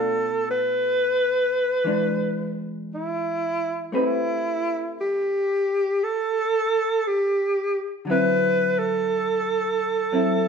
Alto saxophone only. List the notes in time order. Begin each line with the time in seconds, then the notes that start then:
Already playing: A4
0.50 B4
2.94 E4
3.98 E4
5.01 G4
6.03 A4
7.07 G4
8.11 B4
8.78 A4